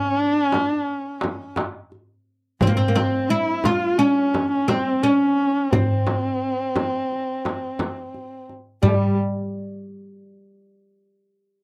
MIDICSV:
0, 0, Header, 1, 5, 480
1, 0, Start_track
1, 0, Tempo, 690449
1, 1818, Time_signature, 9, 3, 24, 8
1, 8087, End_track
2, 0, Start_track
2, 0, Title_t, "Kamancheh"
2, 0, Program_c, 0, 110
2, 0, Note_on_c, 0, 61, 95
2, 166, Note_off_c, 0, 61, 0
2, 166, Note_on_c, 0, 62, 95
2, 298, Note_off_c, 0, 62, 0
2, 298, Note_on_c, 0, 61, 95
2, 451, Note_off_c, 0, 61, 0
2, 451, Note_on_c, 0, 62, 95
2, 590, Note_off_c, 0, 62, 0
2, 590, Note_on_c, 0, 61, 95
2, 1095, Note_off_c, 0, 61, 0
2, 1816, Note_on_c, 0, 60, 66
2, 1908, Note_off_c, 0, 60, 0
2, 1918, Note_on_c, 0, 60, 69
2, 2042, Note_off_c, 0, 60, 0
2, 2046, Note_on_c, 0, 60, 70
2, 2287, Note_on_c, 0, 64, 83
2, 2298, Note_off_c, 0, 60, 0
2, 2540, Note_on_c, 0, 65, 87
2, 2550, Note_off_c, 0, 64, 0
2, 2769, Note_on_c, 0, 61, 90
2, 2780, Note_off_c, 0, 65, 0
2, 3129, Note_off_c, 0, 61, 0
2, 3133, Note_on_c, 0, 61, 80
2, 3252, Note_on_c, 0, 60, 84
2, 3262, Note_off_c, 0, 61, 0
2, 3493, Note_on_c, 0, 61, 83
2, 3503, Note_off_c, 0, 60, 0
2, 3969, Note_on_c, 0, 60, 71
2, 3980, Note_off_c, 0, 61, 0
2, 5895, Note_off_c, 0, 60, 0
2, 6133, Note_on_c, 0, 55, 77
2, 6174, Note_on_c, 0, 57, 62
2, 6184, Note_off_c, 0, 55, 0
2, 6218, Note_on_c, 0, 55, 78
2, 6229, Note_off_c, 0, 57, 0
2, 6371, Note_off_c, 0, 55, 0
2, 8087, End_track
3, 0, Start_track
3, 0, Title_t, "Oud"
3, 0, Program_c, 1, 24
3, 0, Note_on_c, 1, 61, 93
3, 1069, Note_off_c, 1, 61, 0
3, 1824, Note_on_c, 1, 60, 79
3, 1857, Note_on_c, 1, 58, 78
3, 1871, Note_off_c, 1, 60, 0
3, 1911, Note_off_c, 1, 58, 0
3, 1924, Note_on_c, 1, 60, 74
3, 2004, Note_on_c, 1, 58, 62
3, 2046, Note_off_c, 1, 60, 0
3, 2054, Note_on_c, 1, 60, 77
3, 2055, Note_off_c, 1, 58, 0
3, 2293, Note_off_c, 1, 60, 0
3, 2296, Note_on_c, 1, 64, 88
3, 2538, Note_off_c, 1, 64, 0
3, 2540, Note_on_c, 1, 65, 92
3, 2769, Note_off_c, 1, 65, 0
3, 2772, Note_on_c, 1, 61, 92
3, 3251, Note_off_c, 1, 61, 0
3, 3253, Note_on_c, 1, 60, 87
3, 3497, Note_off_c, 1, 60, 0
3, 3499, Note_on_c, 1, 61, 80
3, 3982, Note_on_c, 1, 60, 69
3, 3994, Note_off_c, 1, 61, 0
3, 5874, Note_off_c, 1, 60, 0
3, 6136, Note_on_c, 1, 55, 79
3, 6361, Note_off_c, 1, 55, 0
3, 8087, End_track
4, 0, Start_track
4, 0, Title_t, "Darbuka"
4, 364, Note_on_c, 9, 63, 75
4, 434, Note_off_c, 9, 63, 0
4, 842, Note_on_c, 9, 63, 73
4, 912, Note_off_c, 9, 63, 0
4, 1094, Note_on_c, 9, 63, 79
4, 1163, Note_off_c, 9, 63, 0
4, 1333, Note_on_c, 9, 62, 22
4, 1403, Note_off_c, 9, 62, 0
4, 1817, Note_on_c, 9, 64, 105
4, 1887, Note_off_c, 9, 64, 0
4, 2059, Note_on_c, 9, 63, 70
4, 2129, Note_off_c, 9, 63, 0
4, 2538, Note_on_c, 9, 63, 72
4, 2607, Note_off_c, 9, 63, 0
4, 3022, Note_on_c, 9, 63, 65
4, 3092, Note_off_c, 9, 63, 0
4, 3261, Note_on_c, 9, 63, 75
4, 3331, Note_off_c, 9, 63, 0
4, 3499, Note_on_c, 9, 62, 24
4, 3569, Note_off_c, 9, 62, 0
4, 3980, Note_on_c, 9, 64, 97
4, 4050, Note_off_c, 9, 64, 0
4, 4221, Note_on_c, 9, 63, 67
4, 4291, Note_off_c, 9, 63, 0
4, 4702, Note_on_c, 9, 63, 65
4, 4771, Note_off_c, 9, 63, 0
4, 4950, Note_on_c, 9, 62, 23
4, 5019, Note_off_c, 9, 62, 0
4, 5186, Note_on_c, 9, 63, 65
4, 5256, Note_off_c, 9, 63, 0
4, 5422, Note_on_c, 9, 63, 65
4, 5491, Note_off_c, 9, 63, 0
4, 5662, Note_on_c, 9, 62, 25
4, 5731, Note_off_c, 9, 62, 0
4, 5905, Note_on_c, 9, 62, 22
4, 5975, Note_off_c, 9, 62, 0
4, 6141, Note_on_c, 9, 64, 75
4, 6210, Note_off_c, 9, 64, 0
4, 8087, End_track
5, 0, Start_track
5, 0, Title_t, "Frame drum"
5, 376, Note_on_c, 9, 64, 65
5, 446, Note_off_c, 9, 64, 0
5, 859, Note_on_c, 9, 64, 57
5, 929, Note_off_c, 9, 64, 0
5, 1086, Note_on_c, 9, 64, 62
5, 1155, Note_off_c, 9, 64, 0
5, 1812, Note_on_c, 9, 64, 83
5, 1882, Note_off_c, 9, 64, 0
5, 2053, Note_on_c, 9, 64, 68
5, 2123, Note_off_c, 9, 64, 0
5, 2529, Note_on_c, 9, 64, 67
5, 2599, Note_off_c, 9, 64, 0
5, 3019, Note_on_c, 9, 64, 59
5, 3089, Note_off_c, 9, 64, 0
5, 3258, Note_on_c, 9, 64, 64
5, 3327, Note_off_c, 9, 64, 0
5, 3981, Note_on_c, 9, 64, 72
5, 4051, Note_off_c, 9, 64, 0
5, 4217, Note_on_c, 9, 64, 60
5, 4287, Note_off_c, 9, 64, 0
5, 4697, Note_on_c, 9, 64, 70
5, 4766, Note_off_c, 9, 64, 0
5, 5180, Note_on_c, 9, 64, 58
5, 5250, Note_off_c, 9, 64, 0
5, 5417, Note_on_c, 9, 64, 61
5, 5487, Note_off_c, 9, 64, 0
5, 6138, Note_on_c, 9, 64, 62
5, 6208, Note_off_c, 9, 64, 0
5, 8087, End_track
0, 0, End_of_file